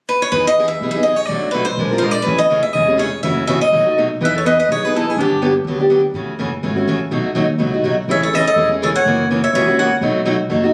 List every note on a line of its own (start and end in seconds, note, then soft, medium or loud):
0.09 0.21 B4 medium
0.22 0.33 C#5 medium
0.32 0.71 E2 medium
0.32 0.51 E3 medium
0.32 0.51 B3 medium
0.32 0.52 D#4 medium
0.32 0.52 G#4 medium
0.32 0.45 B4 medium
0.47 0.67 D#5 medium
0.60 0.68 E3 medium
0.60 0.69 B3 medium
0.60 0.69 D#4 medium
0.60 0.69 G#4 medium
0.68 0.90 E5 medium
0.81 1.20 B1 medium
0.81 0.95 E3 medium
0.81 0.95 B3 medium
0.81 0.95 D#4 medium
0.81 0.93 G#4 medium
0.91 1.05 G#4 soft
0.91 1.03 E5 medium
0.96 1.04 B3 soft
0.96 1.05 D#4 soft
1.03 1.16 E3 medium
1.03 1.16 B3 medium
1.03 1.16 D#4 medium
1.03 1.16 G#4 medium
1.03 1.16 D#5 medium
1.16 1.25 C#5 medium
1.25 1.68 B1 medium
1.25 1.53 D5 medium
1.30 1.48 B2 medium
1.30 1.48 F#3 medium
1.30 1.48 A3 medium
1.30 1.49 D4 medium
1.30 1.48 F#4 medium
1.51 1.64 B2 medium
1.51 1.64 F#3 medium
1.51 1.64 A3 medium
1.51 1.64 D4 medium
1.51 1.64 F#4 medium
1.51 1.65 B4 medium
1.65 1.97 C5 medium
1.77 2.16 A#1 medium
1.77 1.91 F3 medium
1.77 1.92 G#3 medium
1.77 1.92 D4 medium
1.77 1.92 F4 medium
1.77 1.90 A#4 medium
1.91 2.01 D4 soft
1.91 2.02 F4 soft
1.91 2.02 A#4 medium
1.98 2.12 F3 medium
1.98 2.12 G#3 medium
1.98 2.02 A#4 medium
1.98 2.11 C5 medium
2.02 2.12 D4 medium
2.02 2.13 F4 medium
2.02 2.13 A#4 medium
2.11 2.24 D5 medium
2.22 2.44 C#3 medium
2.22 2.44 E3 medium
2.22 2.38 B4 medium
2.26 2.65 A1 medium
2.26 2.45 A3 medium
2.26 2.44 C#4 medium
2.26 2.45 G#4 medium
2.38 2.62 D#5 medium
2.50 2.61 C#3 medium
2.50 2.61 E3 medium
2.50 2.61 A3 medium
2.50 2.61 C#4 medium
2.50 2.61 G#4 medium
2.63 2.73 E5 medium
2.73 3.14 E1 medium
2.73 2.88 C#3 medium
2.73 2.88 E3 medium
2.73 2.88 A3 medium
2.73 2.88 C#4 medium
2.73 2.87 G#4 medium
2.73 2.99 D#5 medium
2.88 2.97 A3 soft
2.88 2.98 C#4 medium
2.88 2.98 G#4 soft
2.97 3.09 C#3 medium
2.97 3.08 E3 medium
2.97 3.09 A3 medium
2.97 3.09 C#4 medium
2.97 3.09 G#4 medium
2.97 3.22 C#5 medium
3.23 3.63 F#1 medium
3.23 3.42 C#3 medium
3.23 3.42 E3 medium
3.23 3.42 A3 medium
3.23 3.42 C#4 medium
3.23 3.42 F#4 medium
3.23 3.46 E5 medium
3.47 3.58 C#3 medium
3.47 3.58 E3 medium
3.47 3.59 A3 medium
3.47 3.58 C#4 medium
3.47 3.59 F#4 medium
3.47 3.61 E5 medium
3.61 4.06 D#5 medium
3.72 4.11 B1 medium
3.72 3.85 B2 medium
3.72 3.86 F#3 medium
3.72 3.85 A3 medium
3.72 3.85 D#4 medium
3.72 3.84 F#4 medium
3.86 3.97 A3 soft
3.86 3.96 D#4 soft
3.86 3.96 F#4 soft
3.98 4.07 B2 medium
3.98 4.07 F#3 medium
3.98 4.07 A3 medium
3.98 4.07 D#4 medium
3.98 4.08 F#4 medium
4.21 4.60 E2 medium
4.21 4.38 E3 medium
4.21 4.39 B3 medium
4.21 4.39 D#4 medium
4.21 4.39 G#4 medium
4.21 4.35 B4 medium
4.25 4.35 E5 medium
4.36 4.45 A4 medium
4.36 4.46 C#5 medium
4.45 4.55 E3 medium
4.45 4.55 B3 medium
4.45 4.55 D#4 medium
4.45 4.56 G#4 medium
4.45 4.58 B4 medium
4.45 4.58 D#5 medium
4.59 4.69 B4 medium
4.59 4.70 D#5 medium
4.69 5.08 B1 medium
4.69 4.82 E3 medium
4.69 4.82 B3 medium
4.69 4.83 D#4 medium
4.69 4.83 G#4 medium
4.69 4.85 C#5 medium
4.83 4.95 B3 soft
4.83 4.94 D#4 soft
4.83 4.93 G#4 medium
4.83 4.94 G#4 medium
4.83 4.95 B4 medium
4.95 5.04 E3 medium
4.95 5.05 B3 medium
4.95 5.05 D#4 medium
4.95 5.09 E4 medium
4.95 5.05 G#4 medium
4.95 5.10 A4 medium
5.09 5.18 E4 medium
5.09 5.19 G#4 medium
5.17 5.56 G2 medium
5.17 5.36 D3 medium
5.17 5.36 F#3 medium
5.17 5.36 B3 medium
5.17 5.53 D4 medium
5.17 5.36 D4 medium
5.17 5.37 G4 medium
5.17 5.54 G4 medium
5.42 5.52 D3 medium
5.42 5.52 F#3 medium
5.42 5.52 B3 medium
5.42 5.52 D4 medium
5.42 5.52 G4 medium
5.64 6.04 D2 medium
5.64 5.79 D3 medium
5.64 5.80 F#3 medium
5.64 5.80 B3 medium
5.64 5.79 D4 medium
5.64 5.78 G4 medium
5.79 5.89 B3 soft
5.79 5.90 D4 soft
5.79 5.89 G4 medium
5.90 6.00 D3 medium
5.90 6.00 F#3 medium
5.90 6.00 B3 medium
5.90 6.01 D4 medium
5.90 6.01 G4 medium
6.14 6.33 A2 medium
6.14 6.32 C#3 medium
6.14 6.32 E3 medium
6.14 6.33 A3 medium
6.14 6.33 C#4 medium
6.14 6.33 F#4 medium
6.38 6.59 F#1 medium
6.38 6.49 C#3 medium
6.38 6.49 E3 medium
6.38 6.49 A3 medium
6.38 6.49 C#4 medium
6.38 6.49 F#4 medium
6.63 6.84 G#1 medium
6.63 6.76 C#3 medium
6.63 6.76 E3 medium
6.63 6.76 A3 medium
6.63 6.76 C#4 medium
6.63 6.75 F#4 medium
6.76 6.87 A3 soft
6.76 6.87 C#4 soft
6.76 6.86 F#4 soft
6.87 7.08 A1 medium
6.87 6.97 C#3 medium
6.87 6.97 E3 medium
6.87 6.98 A3 medium
6.87 6.98 C#4 medium
6.87 6.98 F#4 medium
7.11 7.30 B1 medium
7.11 7.29 B2 medium
7.11 7.29 F#3 medium
7.11 7.29 A3 medium
7.11 7.29 D#4 medium
7.11 7.29 F#4 medium
7.35 7.56 D#2 medium
7.35 7.45 B2 medium
7.35 7.45 F#3 medium
7.35 7.46 A3 medium
7.35 7.46 D#4 medium
7.35 7.46 F#4 medium
7.58 7.80 C#2 medium
7.58 7.72 B2 medium
7.58 7.72 F#3 medium
7.58 7.72 A3 medium
7.58 7.73 D#4 medium
7.58 7.72 F#4 medium
7.74 7.84 A3 soft
7.74 7.84 D#4 soft
7.74 7.84 F#4 soft
7.84 8.04 B1 medium
7.84 7.94 B2 medium
7.84 7.94 F#3 medium
7.84 7.94 A3 medium
7.84 7.94 D#4 medium
7.84 7.95 F#4 medium
8.08 8.47 A1 medium
8.08 8.26 C#3 medium
8.08 8.26 E3 medium
8.08 8.27 A3 medium
8.08 8.27 C#4 medium
8.08 8.27 G#4 medium
8.08 8.22 C#5 medium
8.08 8.22 E5 medium
8.23 8.36 A4 medium
8.23 8.35 C#5 medium
8.33 8.43 C#3 medium
8.33 8.43 E3 medium
8.33 8.43 A3 medium
8.33 8.43 C#4 medium
8.33 8.43 G#4 medium
8.33 8.47 A4 medium
8.33 8.46 D#5 medium
8.47 8.69 A4 medium
8.47 8.69 D#5 medium
8.56 8.95 E1 medium
8.56 8.69 C#3 medium
8.56 8.69 E3 medium
8.56 8.69 A3 medium
8.56 8.69 C#4 medium
8.56 8.69 G#4 medium
8.70 8.81 A3 soft
8.70 8.81 C#4 soft
8.70 8.80 G#4 soft
8.82 8.91 C#3 medium
8.82 8.91 E3 medium
8.82 8.92 A3 medium
8.82 8.91 C#4 medium
8.82 8.92 G#4 medium
8.82 8.89 A4 medium
8.82 8.88 C#5 medium
8.96 9.28 C#5 medium
8.96 9.27 F#5 medium
9.05 9.44 F#1 medium
9.05 9.24 C#3 medium
9.05 9.24 E3 medium
9.05 9.24 A#3 medium
9.05 9.24 C#4 medium
9.05 9.24 F#4 medium
9.30 9.40 C#3 medium
9.30 9.40 E3 medium
9.30 9.40 A#3 medium
9.30 9.40 C#4 medium
9.30 9.40 F#4 medium
9.43 9.52 C#5 medium
9.43 9.54 E5 medium
9.53 9.92 C#2 medium
9.53 9.67 C#3 medium
9.53 9.67 E3 medium
9.53 9.67 A#3 medium
9.53 9.67 C#4 medium
9.53 9.67 F#4 medium
9.53 9.75 C#5 medium
9.53 9.77 E5 medium
9.68 9.78 A#3 soft
9.68 9.78 C#4 soft
9.68 9.77 F#4 medium
9.78 9.88 C#3 medium
9.78 9.88 E3 medium
9.78 9.88 A#3 medium
9.78 9.88 C#4 medium
9.78 9.89 F#4 medium
9.78 9.95 C#5 medium
9.78 9.96 F#5 medium
10.01 10.40 B1 medium
10.01 10.19 B2 medium
10.01 10.20 F#3 medium
10.01 10.20 A3 medium
10.01 10.20 D#4 medium
10.01 10.20 F#4 medium
10.25 10.35 B2 medium
10.25 10.36 F#3 medium
10.25 10.36 A3 medium
10.25 10.36 D#4 medium
10.25 10.36 F#4 medium
10.50 10.73 F#1 medium
10.50 10.63 B2 medium
10.50 10.63 F#3 medium
10.50 10.63 A3 medium
10.50 10.63 D#4 medium
10.50 10.62 F#4 medium
10.63 10.73 A3 soft
10.63 10.73 D#4 soft
10.63 10.73 F#4 medium